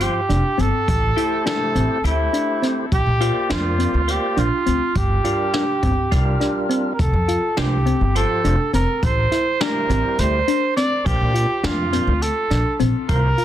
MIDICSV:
0, 0, Header, 1, 6, 480
1, 0, Start_track
1, 0, Tempo, 581395
1, 727, Time_signature, 7, 3, 24, 8
1, 11103, End_track
2, 0, Start_track
2, 0, Title_t, "Trumpet"
2, 0, Program_c, 0, 56
2, 18, Note_on_c, 0, 67, 89
2, 501, Note_on_c, 0, 69, 108
2, 513, Note_off_c, 0, 67, 0
2, 1212, Note_off_c, 0, 69, 0
2, 1217, Note_on_c, 0, 69, 98
2, 1661, Note_off_c, 0, 69, 0
2, 1701, Note_on_c, 0, 64, 88
2, 2203, Note_off_c, 0, 64, 0
2, 2417, Note_on_c, 0, 67, 100
2, 2862, Note_off_c, 0, 67, 0
2, 2899, Note_on_c, 0, 65, 88
2, 3387, Note_on_c, 0, 67, 94
2, 3399, Note_off_c, 0, 65, 0
2, 3623, Note_on_c, 0, 65, 89
2, 3635, Note_off_c, 0, 67, 0
2, 4103, Note_on_c, 0, 67, 90
2, 4115, Note_off_c, 0, 65, 0
2, 5538, Note_off_c, 0, 67, 0
2, 5719, Note_on_c, 0, 70, 60
2, 5789, Note_on_c, 0, 69, 86
2, 5802, Note_off_c, 0, 70, 0
2, 6259, Note_on_c, 0, 67, 79
2, 6272, Note_off_c, 0, 69, 0
2, 6736, Note_off_c, 0, 67, 0
2, 6741, Note_on_c, 0, 69, 86
2, 7183, Note_off_c, 0, 69, 0
2, 7220, Note_on_c, 0, 70, 89
2, 7464, Note_on_c, 0, 72, 100
2, 7476, Note_off_c, 0, 70, 0
2, 7934, Note_on_c, 0, 70, 95
2, 7947, Note_off_c, 0, 72, 0
2, 8417, Note_on_c, 0, 72, 96
2, 8430, Note_off_c, 0, 70, 0
2, 8883, Note_off_c, 0, 72, 0
2, 8888, Note_on_c, 0, 74, 104
2, 9132, Note_on_c, 0, 67, 100
2, 9144, Note_off_c, 0, 74, 0
2, 9615, Note_on_c, 0, 65, 86
2, 9627, Note_off_c, 0, 67, 0
2, 10090, Note_on_c, 0, 69, 84
2, 10102, Note_off_c, 0, 65, 0
2, 10587, Note_off_c, 0, 69, 0
2, 10811, Note_on_c, 0, 70, 115
2, 11103, Note_off_c, 0, 70, 0
2, 11103, End_track
3, 0, Start_track
3, 0, Title_t, "Tonewheel organ"
3, 0, Program_c, 1, 16
3, 2, Note_on_c, 1, 53, 64
3, 5, Note_on_c, 1, 65, 59
3, 5, Note_on_c, 1, 67, 60
3, 7, Note_on_c, 1, 72, 75
3, 172, Note_off_c, 1, 53, 0
3, 173, Note_off_c, 1, 65, 0
3, 173, Note_off_c, 1, 67, 0
3, 174, Note_off_c, 1, 72, 0
3, 960, Note_on_c, 1, 57, 65
3, 961, Note_on_c, 1, 67, 58
3, 962, Note_on_c, 1, 64, 60
3, 963, Note_on_c, 1, 72, 69
3, 1637, Note_off_c, 1, 57, 0
3, 1638, Note_off_c, 1, 64, 0
3, 1638, Note_off_c, 1, 67, 0
3, 1639, Note_off_c, 1, 72, 0
3, 1685, Note_on_c, 1, 57, 64
3, 1686, Note_on_c, 1, 67, 62
3, 1687, Note_on_c, 1, 64, 64
3, 1688, Note_on_c, 1, 72, 70
3, 2361, Note_off_c, 1, 57, 0
3, 2361, Note_off_c, 1, 67, 0
3, 2362, Note_off_c, 1, 64, 0
3, 2362, Note_off_c, 1, 72, 0
3, 2647, Note_on_c, 1, 58, 61
3, 2647, Note_on_c, 1, 72, 52
3, 2648, Note_on_c, 1, 65, 57
3, 2648, Note_on_c, 1, 74, 67
3, 3322, Note_off_c, 1, 58, 0
3, 3322, Note_off_c, 1, 72, 0
3, 3322, Note_off_c, 1, 74, 0
3, 3323, Note_off_c, 1, 65, 0
3, 3365, Note_on_c, 1, 58, 70
3, 3366, Note_on_c, 1, 65, 65
3, 3369, Note_on_c, 1, 72, 65
3, 3369, Note_on_c, 1, 74, 77
3, 3705, Note_off_c, 1, 58, 0
3, 3705, Note_off_c, 1, 65, 0
3, 3707, Note_off_c, 1, 72, 0
3, 3707, Note_off_c, 1, 74, 0
3, 4328, Note_on_c, 1, 55, 60
3, 4328, Note_on_c, 1, 62, 50
3, 4331, Note_on_c, 1, 70, 63
3, 4332, Note_on_c, 1, 65, 55
3, 4667, Note_off_c, 1, 55, 0
3, 4667, Note_off_c, 1, 62, 0
3, 4668, Note_off_c, 1, 70, 0
3, 4669, Note_off_c, 1, 65, 0
3, 5047, Note_on_c, 1, 62, 62
3, 5047, Note_on_c, 1, 65, 64
3, 5048, Note_on_c, 1, 55, 69
3, 5050, Note_on_c, 1, 70, 76
3, 5722, Note_off_c, 1, 55, 0
3, 5722, Note_off_c, 1, 62, 0
3, 5722, Note_off_c, 1, 65, 0
3, 5723, Note_off_c, 1, 70, 0
3, 6250, Note_on_c, 1, 65, 53
3, 6251, Note_on_c, 1, 53, 57
3, 6251, Note_on_c, 1, 67, 51
3, 6253, Note_on_c, 1, 72, 61
3, 6420, Note_off_c, 1, 53, 0
3, 6420, Note_off_c, 1, 65, 0
3, 6420, Note_off_c, 1, 67, 0
3, 6421, Note_off_c, 1, 72, 0
3, 6731, Note_on_c, 1, 53, 68
3, 6731, Note_on_c, 1, 65, 62
3, 6731, Note_on_c, 1, 67, 64
3, 6733, Note_on_c, 1, 72, 75
3, 7068, Note_off_c, 1, 53, 0
3, 7068, Note_off_c, 1, 65, 0
3, 7068, Note_off_c, 1, 67, 0
3, 7069, Note_off_c, 1, 72, 0
3, 7931, Note_on_c, 1, 64, 54
3, 7932, Note_on_c, 1, 55, 58
3, 7934, Note_on_c, 1, 72, 62
3, 7935, Note_on_c, 1, 67, 50
3, 8402, Note_off_c, 1, 64, 0
3, 8402, Note_off_c, 1, 67, 0
3, 8403, Note_off_c, 1, 72, 0
3, 8411, Note_on_c, 1, 57, 73
3, 8411, Note_on_c, 1, 67, 66
3, 8412, Note_on_c, 1, 64, 62
3, 8413, Note_on_c, 1, 72, 79
3, 8579, Note_off_c, 1, 57, 0
3, 8580, Note_off_c, 1, 64, 0
3, 8580, Note_off_c, 1, 67, 0
3, 8580, Note_off_c, 1, 72, 0
3, 8603, Note_off_c, 1, 55, 0
3, 9126, Note_on_c, 1, 46, 63
3, 9127, Note_on_c, 1, 62, 59
3, 9127, Note_on_c, 1, 72, 65
3, 9128, Note_on_c, 1, 58, 60
3, 9464, Note_off_c, 1, 46, 0
3, 9465, Note_off_c, 1, 58, 0
3, 9465, Note_off_c, 1, 62, 0
3, 9465, Note_off_c, 1, 72, 0
3, 9846, Note_on_c, 1, 46, 56
3, 9848, Note_on_c, 1, 58, 55
3, 9848, Note_on_c, 1, 62, 53
3, 9850, Note_on_c, 1, 72, 60
3, 10016, Note_off_c, 1, 46, 0
3, 10017, Note_off_c, 1, 58, 0
3, 10017, Note_off_c, 1, 62, 0
3, 10018, Note_off_c, 1, 72, 0
3, 10803, Note_on_c, 1, 48, 72
3, 10806, Note_on_c, 1, 58, 64
3, 10807, Note_on_c, 1, 65, 62
3, 10808, Note_on_c, 1, 72, 81
3, 10974, Note_off_c, 1, 48, 0
3, 10975, Note_off_c, 1, 58, 0
3, 10976, Note_off_c, 1, 65, 0
3, 10976, Note_off_c, 1, 72, 0
3, 11103, End_track
4, 0, Start_track
4, 0, Title_t, "Synth arpeggio sound"
4, 0, Program_c, 2, 84
4, 241, Note_on_c, 2, 62, 73
4, 388, Note_off_c, 2, 62, 0
4, 478, Note_on_c, 2, 60, 72
4, 626, Note_off_c, 2, 60, 0
4, 964, Note_on_c, 2, 64, 74
4, 1111, Note_off_c, 2, 64, 0
4, 1203, Note_on_c, 2, 62, 80
4, 1350, Note_off_c, 2, 62, 0
4, 1445, Note_on_c, 2, 60, 69
4, 1737, Note_off_c, 2, 60, 0
4, 1925, Note_on_c, 2, 62, 73
4, 2072, Note_off_c, 2, 62, 0
4, 2166, Note_on_c, 2, 60, 79
4, 2313, Note_off_c, 2, 60, 0
4, 2647, Note_on_c, 2, 65, 75
4, 2794, Note_off_c, 2, 65, 0
4, 2887, Note_on_c, 2, 62, 92
4, 3033, Note_off_c, 2, 62, 0
4, 3124, Note_on_c, 2, 60, 70
4, 3417, Note_off_c, 2, 60, 0
4, 3606, Note_on_c, 2, 62, 74
4, 3754, Note_off_c, 2, 62, 0
4, 3849, Note_on_c, 2, 60, 75
4, 3996, Note_off_c, 2, 60, 0
4, 4330, Note_on_c, 2, 65, 77
4, 4476, Note_off_c, 2, 65, 0
4, 4573, Note_on_c, 2, 62, 84
4, 4718, Note_off_c, 2, 62, 0
4, 4812, Note_on_c, 2, 60, 71
4, 5103, Note_off_c, 2, 60, 0
4, 5289, Note_on_c, 2, 62, 71
4, 5435, Note_off_c, 2, 62, 0
4, 5527, Note_on_c, 2, 60, 73
4, 5674, Note_off_c, 2, 60, 0
4, 6012, Note_on_c, 2, 65, 77
4, 6158, Note_off_c, 2, 65, 0
4, 6249, Note_on_c, 2, 62, 85
4, 6395, Note_off_c, 2, 62, 0
4, 6489, Note_on_c, 2, 60, 76
4, 6780, Note_off_c, 2, 60, 0
4, 6970, Note_on_c, 2, 62, 76
4, 7116, Note_off_c, 2, 62, 0
4, 7212, Note_on_c, 2, 60, 76
4, 7357, Note_off_c, 2, 60, 0
4, 7692, Note_on_c, 2, 64, 73
4, 7837, Note_off_c, 2, 64, 0
4, 7933, Note_on_c, 2, 62, 93
4, 8078, Note_off_c, 2, 62, 0
4, 8171, Note_on_c, 2, 60, 75
4, 8461, Note_off_c, 2, 60, 0
4, 8650, Note_on_c, 2, 62, 79
4, 8795, Note_off_c, 2, 62, 0
4, 8890, Note_on_c, 2, 60, 76
4, 9036, Note_off_c, 2, 60, 0
4, 9366, Note_on_c, 2, 65, 80
4, 9513, Note_off_c, 2, 65, 0
4, 9606, Note_on_c, 2, 62, 89
4, 9753, Note_off_c, 2, 62, 0
4, 9847, Note_on_c, 2, 60, 71
4, 10138, Note_off_c, 2, 60, 0
4, 10324, Note_on_c, 2, 62, 75
4, 10471, Note_off_c, 2, 62, 0
4, 10564, Note_on_c, 2, 60, 80
4, 10711, Note_off_c, 2, 60, 0
4, 11045, Note_on_c, 2, 65, 73
4, 11103, Note_off_c, 2, 65, 0
4, 11103, End_track
5, 0, Start_track
5, 0, Title_t, "Upright bass"
5, 0, Program_c, 3, 32
5, 243, Note_on_c, 3, 29, 79
5, 335, Note_off_c, 3, 29, 0
5, 483, Note_on_c, 3, 31, 78
5, 575, Note_off_c, 3, 31, 0
5, 727, Note_on_c, 3, 33, 96
5, 910, Note_off_c, 3, 33, 0
5, 1445, Note_on_c, 3, 33, 82
5, 1538, Note_off_c, 3, 33, 0
5, 1684, Note_on_c, 3, 38, 91
5, 1868, Note_off_c, 3, 38, 0
5, 2410, Note_on_c, 3, 34, 82
5, 2501, Note_off_c, 3, 34, 0
5, 2530, Note_on_c, 3, 46, 82
5, 2713, Note_off_c, 3, 46, 0
5, 2890, Note_on_c, 3, 41, 82
5, 3164, Note_off_c, 3, 41, 0
5, 3253, Note_on_c, 3, 38, 78
5, 3435, Note_off_c, 3, 38, 0
5, 3608, Note_on_c, 3, 34, 78
5, 3701, Note_off_c, 3, 34, 0
5, 3855, Note_on_c, 3, 38, 74
5, 3945, Note_off_c, 3, 38, 0
5, 4090, Note_on_c, 3, 31, 94
5, 4273, Note_off_c, 3, 31, 0
5, 4813, Note_on_c, 3, 31, 80
5, 4904, Note_off_c, 3, 31, 0
5, 5051, Note_on_c, 3, 36, 89
5, 5234, Note_off_c, 3, 36, 0
5, 5773, Note_on_c, 3, 29, 82
5, 5864, Note_off_c, 3, 29, 0
5, 5889, Note_on_c, 3, 41, 83
5, 6073, Note_off_c, 3, 41, 0
5, 6251, Note_on_c, 3, 36, 80
5, 6525, Note_off_c, 3, 36, 0
5, 6612, Note_on_c, 3, 31, 74
5, 6794, Note_off_c, 3, 31, 0
5, 6970, Note_on_c, 3, 29, 86
5, 7062, Note_off_c, 3, 29, 0
5, 7209, Note_on_c, 3, 29, 78
5, 7302, Note_off_c, 3, 29, 0
5, 7453, Note_on_c, 3, 33, 99
5, 7635, Note_off_c, 3, 33, 0
5, 8169, Note_on_c, 3, 33, 89
5, 8261, Note_off_c, 3, 33, 0
5, 8408, Note_on_c, 3, 38, 92
5, 8591, Note_off_c, 3, 38, 0
5, 9131, Note_on_c, 3, 34, 85
5, 9222, Note_off_c, 3, 34, 0
5, 9250, Note_on_c, 3, 46, 86
5, 9432, Note_off_c, 3, 46, 0
5, 9605, Note_on_c, 3, 41, 80
5, 9880, Note_off_c, 3, 41, 0
5, 9966, Note_on_c, 3, 38, 83
5, 10150, Note_off_c, 3, 38, 0
5, 10324, Note_on_c, 3, 34, 81
5, 10417, Note_off_c, 3, 34, 0
5, 10564, Note_on_c, 3, 34, 78
5, 10657, Note_off_c, 3, 34, 0
5, 10807, Note_on_c, 3, 36, 89
5, 10990, Note_off_c, 3, 36, 0
5, 11103, End_track
6, 0, Start_track
6, 0, Title_t, "Drums"
6, 4, Note_on_c, 9, 42, 71
6, 86, Note_off_c, 9, 42, 0
6, 247, Note_on_c, 9, 42, 54
6, 330, Note_off_c, 9, 42, 0
6, 487, Note_on_c, 9, 42, 55
6, 570, Note_off_c, 9, 42, 0
6, 727, Note_on_c, 9, 36, 102
6, 728, Note_on_c, 9, 42, 78
6, 810, Note_off_c, 9, 36, 0
6, 811, Note_off_c, 9, 42, 0
6, 969, Note_on_c, 9, 42, 58
6, 1052, Note_off_c, 9, 42, 0
6, 1210, Note_on_c, 9, 38, 105
6, 1210, Note_on_c, 9, 42, 84
6, 1292, Note_off_c, 9, 38, 0
6, 1292, Note_off_c, 9, 42, 0
6, 1449, Note_on_c, 9, 42, 57
6, 1532, Note_off_c, 9, 42, 0
6, 1691, Note_on_c, 9, 42, 73
6, 1774, Note_off_c, 9, 42, 0
6, 1929, Note_on_c, 9, 42, 56
6, 2012, Note_off_c, 9, 42, 0
6, 2172, Note_on_c, 9, 38, 29
6, 2172, Note_on_c, 9, 42, 53
6, 2255, Note_off_c, 9, 38, 0
6, 2255, Note_off_c, 9, 42, 0
6, 2410, Note_on_c, 9, 36, 92
6, 2410, Note_on_c, 9, 42, 67
6, 2492, Note_off_c, 9, 36, 0
6, 2492, Note_off_c, 9, 42, 0
6, 2652, Note_on_c, 9, 42, 54
6, 2734, Note_off_c, 9, 42, 0
6, 2892, Note_on_c, 9, 38, 110
6, 2892, Note_on_c, 9, 42, 82
6, 2975, Note_off_c, 9, 38, 0
6, 2975, Note_off_c, 9, 42, 0
6, 3132, Note_on_c, 9, 42, 54
6, 3215, Note_off_c, 9, 42, 0
6, 3370, Note_on_c, 9, 42, 69
6, 3453, Note_off_c, 9, 42, 0
6, 3610, Note_on_c, 9, 42, 57
6, 3693, Note_off_c, 9, 42, 0
6, 3850, Note_on_c, 9, 42, 54
6, 3932, Note_off_c, 9, 42, 0
6, 4088, Note_on_c, 9, 42, 76
6, 4091, Note_on_c, 9, 36, 92
6, 4171, Note_off_c, 9, 42, 0
6, 4173, Note_off_c, 9, 36, 0
6, 4331, Note_on_c, 9, 42, 62
6, 4414, Note_off_c, 9, 42, 0
6, 4571, Note_on_c, 9, 38, 104
6, 4571, Note_on_c, 9, 42, 81
6, 4654, Note_off_c, 9, 38, 0
6, 4654, Note_off_c, 9, 42, 0
6, 4811, Note_on_c, 9, 42, 61
6, 4812, Note_on_c, 9, 36, 70
6, 4893, Note_off_c, 9, 42, 0
6, 4894, Note_off_c, 9, 36, 0
6, 5051, Note_on_c, 9, 38, 33
6, 5051, Note_on_c, 9, 42, 77
6, 5052, Note_on_c, 9, 36, 99
6, 5134, Note_off_c, 9, 36, 0
6, 5134, Note_off_c, 9, 38, 0
6, 5134, Note_off_c, 9, 42, 0
6, 5292, Note_on_c, 9, 38, 32
6, 5292, Note_on_c, 9, 42, 56
6, 5375, Note_off_c, 9, 38, 0
6, 5375, Note_off_c, 9, 42, 0
6, 5534, Note_on_c, 9, 42, 56
6, 5616, Note_off_c, 9, 42, 0
6, 5773, Note_on_c, 9, 36, 98
6, 5773, Note_on_c, 9, 42, 73
6, 5855, Note_off_c, 9, 36, 0
6, 5855, Note_off_c, 9, 42, 0
6, 6014, Note_on_c, 9, 42, 58
6, 6096, Note_off_c, 9, 42, 0
6, 6251, Note_on_c, 9, 38, 103
6, 6251, Note_on_c, 9, 42, 75
6, 6333, Note_off_c, 9, 38, 0
6, 6333, Note_off_c, 9, 42, 0
6, 6492, Note_on_c, 9, 42, 52
6, 6575, Note_off_c, 9, 42, 0
6, 6733, Note_on_c, 9, 42, 70
6, 6815, Note_off_c, 9, 42, 0
6, 6973, Note_on_c, 9, 42, 57
6, 7056, Note_off_c, 9, 42, 0
6, 7213, Note_on_c, 9, 42, 54
6, 7296, Note_off_c, 9, 42, 0
6, 7453, Note_on_c, 9, 36, 98
6, 7453, Note_on_c, 9, 42, 74
6, 7536, Note_off_c, 9, 36, 0
6, 7536, Note_off_c, 9, 42, 0
6, 7694, Note_on_c, 9, 38, 33
6, 7694, Note_on_c, 9, 42, 59
6, 7777, Note_off_c, 9, 38, 0
6, 7777, Note_off_c, 9, 42, 0
6, 7931, Note_on_c, 9, 38, 109
6, 7931, Note_on_c, 9, 42, 85
6, 8014, Note_off_c, 9, 38, 0
6, 8014, Note_off_c, 9, 42, 0
6, 8174, Note_on_c, 9, 42, 58
6, 8256, Note_off_c, 9, 42, 0
6, 8410, Note_on_c, 9, 42, 83
6, 8493, Note_off_c, 9, 42, 0
6, 8651, Note_on_c, 9, 42, 59
6, 8734, Note_off_c, 9, 42, 0
6, 8892, Note_on_c, 9, 38, 30
6, 8892, Note_on_c, 9, 42, 60
6, 8975, Note_off_c, 9, 38, 0
6, 8975, Note_off_c, 9, 42, 0
6, 9131, Note_on_c, 9, 36, 104
6, 9132, Note_on_c, 9, 42, 77
6, 9213, Note_off_c, 9, 36, 0
6, 9215, Note_off_c, 9, 42, 0
6, 9372, Note_on_c, 9, 42, 62
6, 9454, Note_off_c, 9, 42, 0
6, 9611, Note_on_c, 9, 38, 112
6, 9611, Note_on_c, 9, 42, 84
6, 9693, Note_off_c, 9, 38, 0
6, 9693, Note_off_c, 9, 42, 0
6, 9850, Note_on_c, 9, 38, 32
6, 9850, Note_on_c, 9, 42, 61
6, 9932, Note_off_c, 9, 38, 0
6, 9932, Note_off_c, 9, 42, 0
6, 10088, Note_on_c, 9, 42, 75
6, 10171, Note_off_c, 9, 42, 0
6, 10328, Note_on_c, 9, 38, 33
6, 10328, Note_on_c, 9, 42, 59
6, 10410, Note_off_c, 9, 38, 0
6, 10410, Note_off_c, 9, 42, 0
6, 10568, Note_on_c, 9, 42, 54
6, 10650, Note_off_c, 9, 42, 0
6, 10806, Note_on_c, 9, 42, 71
6, 10808, Note_on_c, 9, 36, 97
6, 10889, Note_off_c, 9, 42, 0
6, 10890, Note_off_c, 9, 36, 0
6, 11046, Note_on_c, 9, 42, 56
6, 11103, Note_off_c, 9, 42, 0
6, 11103, End_track
0, 0, End_of_file